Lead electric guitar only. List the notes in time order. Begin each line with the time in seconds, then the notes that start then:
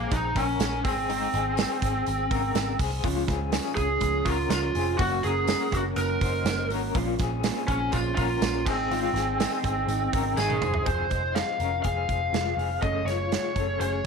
Already playing: A#3
0.11 D#4
0.36 C#4
0.85 C4
3.75 G#4
4.25 F4
4.51 F4
4.98 F#4
5.24 G#4
5.73 F#4
5.97 A#4
7.68 C#4
7.92 F4
8.15 F4
8.66 C4
10.37 G#4
10.86 C5
11.35 F5
11.83 F5
12.82 D#5
13.06 C#5
13.80 C#5